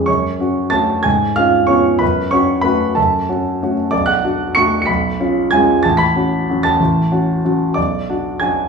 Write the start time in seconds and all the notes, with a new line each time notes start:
0.06 F#2 C#5 C#6
0.40 C#4 F#4
0.70 A3 C#4 F#4 A5 A6
1.03 G#2 G#5 G#6
1.36 C#4 F4 F5 F6
1.67 B3 C#4 F4 C#5 C#6
1.99 F#2 B4 B5
2.31 C#4 F#4 C#5 C#6
2.61 A3 C#4 F#4 B4 B5
2.95 F#2 A4 A5
3.29 C#4 F#4
3.63 A3 C#4 F#4
3.91 B1 D5 D6
4.06 F#5 F#6
4.24 D4 F#4
4.55 A3 D4 F#4 C#6 C#7
4.82 B6 C#7
4.87 B1 B5
5.20 C#4 F4
5.51 G#3 C#4 F4 G#5 G#6
5.83 A1 A5 A6
5.97 B5 B6
6.16 C#4 F#4
6.50 F#3 C#4 F#4
6.63 A5 A6
6.80 A1
7.12 C#4 F#4
7.44 F#3 C#4 F#4
7.74 B1 D5 D6
8.10 D4 F#4
8.40 F#3 D4 F#4 G#5 G#6